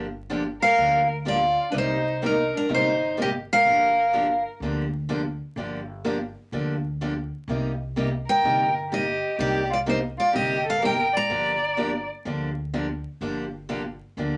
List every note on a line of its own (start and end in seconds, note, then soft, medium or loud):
0.00 0.58 G1 medium
0.30 0.42 D3 medium
0.30 0.42 F3 medium
0.30 0.42 A#3 medium
0.30 0.42 D4 medium
0.30 0.42 G4 loud
0.62 1.07 A#4 medium
0.62 1.07 F5 loud
0.77 1.54 D2 medium
0.77 1.00 D3 medium
0.77 1.00 F3 medium
0.77 1.00 A#3 medium
0.77 1.01 D4 medium
0.77 1.00 G4 medium
1.25 1.38 D3 medium
1.25 1.38 F3 medium
1.25 1.38 A#3 medium
1.25 1.38 D4 medium
1.25 1.67 F4 medium
1.25 1.38 G4 medium
1.25 1.72 D5 medium
1.71 2.50 C2 medium
1.71 1.96 C3 medium
1.71 1.96 G3 medium
1.71 1.96 A#3 medium
1.71 1.75 D4 medium
1.71 1.96 D#4 medium
1.71 1.96 G4 medium
1.71 1.75 B4 medium
1.77 2.20 D#4 medium
1.77 2.25 C5 medium
2.22 2.34 C3 medium
2.22 2.34 G3 medium
2.22 2.34 A#3 medium
2.22 2.34 D#4 medium
2.22 2.53 D#4 medium
2.22 2.34 G4 medium
2.26 2.56 A#4 medium
2.57 2.70 D4 medium
2.57 2.72 A#4 medium
2.69 3.46 G1 medium
2.69 2.92 C3 medium
2.69 2.92 G3 medium
2.69 2.92 A#3 medium
2.69 2.92 D#4 medium
2.69 3.16 D#4 medium
2.69 2.92 G4 medium
2.74 3.17 C5 medium
3.17 3.29 C3 medium
3.17 3.29 G3 medium
3.17 3.29 A#3 medium
3.17 3.29 D#4 medium
3.17 3.29 G4 medium
3.22 3.35 G4 medium
3.22 3.30 D#5 loud
3.53 4.43 A#4 medium
3.53 4.43 F5 loud
3.65 4.42 G1 medium
3.65 3.88 D3 medium
3.65 3.88 F3 medium
3.65 3.88 A#3 medium
3.65 3.89 D4 medium
3.65 3.89 G4 medium
4.13 4.25 D3 medium
4.13 4.25 F3 medium
4.13 4.25 A#3 medium
4.13 4.25 D4 medium
4.13 4.25 G4 medium
4.60 5.37 D2 medium
4.60 4.84 D3 medium
4.60 4.84 F3 medium
4.60 4.84 A#3 medium
4.60 4.84 D4 medium
4.60 4.84 G4 medium
5.09 5.21 D3 medium
5.09 5.21 F3 medium
5.09 5.21 A#3 medium
5.09 5.21 D4 medium
5.09 5.21 G4 medium
5.56 6.33 G1 medium
5.56 5.79 D3 medium
5.56 5.80 F3 medium
5.56 5.79 A#3 medium
5.56 5.79 D4 medium
5.56 5.80 G4 medium
6.04 6.16 D3 medium
6.04 6.17 F3 medium
6.04 6.16 A#3 medium
6.04 6.17 D4 medium
6.04 6.16 G4 medium
6.52 7.29 D2 medium
6.52 6.75 D3 medium
6.52 6.75 F3 medium
6.52 6.75 A#3 medium
6.52 6.75 D4 medium
6.52 6.75 G4 medium
7.01 7.12 D3 medium
7.01 7.13 F3 medium
7.01 7.13 A#3 medium
7.01 7.13 D4 medium
7.01 7.13 G4 medium
7.48 8.24 C2 medium
7.48 7.71 C3 medium
7.48 7.71 G3 medium
7.48 7.71 A#3 medium
7.48 7.71 D#4 medium
7.48 7.72 G4 medium
7.96 8.08 C3 medium
7.96 8.08 G3 medium
7.96 8.08 A#3 medium
7.96 8.08 D#4 medium
7.96 8.08 G4 medium
8.27 8.72 A#4 medium
8.27 8.73 G5 loud
8.43 9.20 G1 medium
8.43 8.66 C3 medium
8.43 8.66 G3 medium
8.43 8.67 A#3 medium
8.43 8.67 D#4 medium
8.43 8.67 G4 medium
8.90 9.03 C3 medium
8.90 9.04 G3 medium
8.90 9.04 A#3 medium
8.90 9.04 D#4 medium
8.90 9.35 G4 medium
8.90 9.04 G4 medium
8.90 9.40 D#5 medium
9.39 10.16 C2 medium
9.39 9.61 C3 medium
9.39 9.61 G3 medium
9.39 9.62 A#3 medium
9.39 9.62 D#4 medium
9.39 9.68 G4 medium
9.39 9.62 G4 medium
9.39 9.72 D5 medium
9.70 9.78 F4 medium
9.70 9.78 D5 medium
9.86 9.99 C3 medium
9.86 9.99 G3 medium
9.86 9.99 A#3 medium
9.86 9.99 D#4 medium
9.86 10.02 D#4 medium
9.86 9.99 G4 medium
9.86 9.98 C5 medium
10.18 10.34 F4 medium
10.18 10.35 D5 medium
10.33 11.11 G1 medium
10.33 10.57 C3 medium
10.33 10.57 G3 medium
10.33 10.57 A#3 medium
10.33 10.57 D#4 medium
10.33 10.57 G4 medium
10.33 10.64 G4 medium
10.33 10.65 D#5 medium
10.66 10.80 A4 medium
10.66 10.85 F5 medium
10.81 10.95 C3 medium
10.81 10.94 G3 medium
10.81 10.95 A#3 medium
10.81 10.95 D#4 medium
10.81 10.95 G4 medium
10.81 11.11 A#4 medium
10.85 11.14 G5 medium
11.13 12.06 D5 medium
11.13 12.07 A#5 loud
11.29 12.06 G1 medium
11.29 11.53 D3 medium
11.29 11.53 F3 medium
11.29 11.53 A#3 medium
11.29 11.53 D4 medium
11.29 11.53 G4 medium
11.77 11.90 D3 medium
11.77 11.90 F3 medium
11.77 11.90 A#3 medium
11.77 11.90 D4 medium
11.77 11.90 G4 medium
12.25 13.02 D2 medium
12.25 12.48 D3 medium
12.25 12.48 F3 medium
12.25 12.49 A#3 medium
12.25 12.49 D4 medium
12.25 12.49 G4 medium
12.74 12.86 D3 medium
12.74 12.86 F3 medium
12.74 12.86 A#3 medium
12.74 12.86 D4 medium
12.74 12.86 G4 medium
13.21 13.98 G1 medium
13.21 13.44 D3 medium
13.21 13.44 F3 medium
13.21 13.44 A#3 medium
13.21 13.44 D4 medium
13.21 13.45 G4 medium
13.69 13.81 D3 medium
13.69 13.81 F3 medium
13.69 13.82 A#3 medium
13.69 13.82 D4 medium
13.69 13.82 G4 medium
14.17 14.37 D2 medium
14.17 14.37 D3 medium
14.17 14.37 F3 medium
14.17 14.37 A#3 medium
14.17 14.37 D4 medium
14.17 14.37 G4 medium